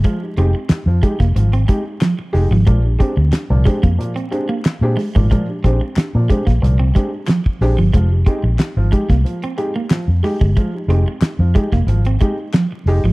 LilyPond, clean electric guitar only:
\new Staff \with { instrumentName = "Clean electric guitar" } { \clef bass \time 4/4 \key f \dorian \tempo 4 = 91 aes16 r16 c'16 r8. aes16 bes16 r16 c'16 aes16 r16 f16 r8 f16 | aes16 r16 c'16 r8. aes16 bes16 r16 c'16 r16 bes16 r8 aes16 aes16 | aes16 r16 c'16 r8. aes16 bes16 r16 c'16 aes16 r16 f16 r8 f16 | aes16 r16 c'16 r8. aes16 bes16 r16 c'16 r16 bes16 r8 aes16 aes16 |
aes16 r16 c'16 r8. aes16 bes16 r16 c'16 aes16 r16 f16 r8 f16 | }